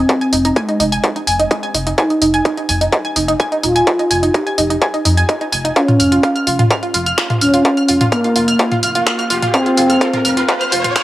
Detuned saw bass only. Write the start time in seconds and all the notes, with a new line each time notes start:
0.33 F1
0.80 F1
1.27 F1
1.74 F1
2.22 F1
2.69 F1
3.16 F1
3.63 D#1
4.11 F1
4.58 F1
5.05 F2
5.52 F1
6.00 F1
6.47 F1
6.94 F1
7.41 D#1
7.89 F1
8.36 F1
8.83 F1
9.30 F1
9.77 F1
10.25 F1
10.72 F1